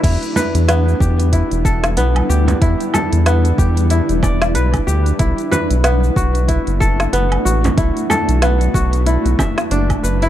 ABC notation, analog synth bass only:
X:1
M:4/4
L:1/16
Q:"Swing 16ths" 1/4=93
K:Em
V:1 name="Analog synth bass" clef=bass
E,, z2 E,,3 E,,3 E,,,3 B,,, z D,, z | E,, z2 E,,3 E,,3 E,,,3 B,,, z D,, z | B,,, z2 B,,,3 B,,,3 F,,,3 F,,, z A,,, z | B,,, z2 B,,,3 B,,,3 B,,, z2 F,,, z F,,, z |]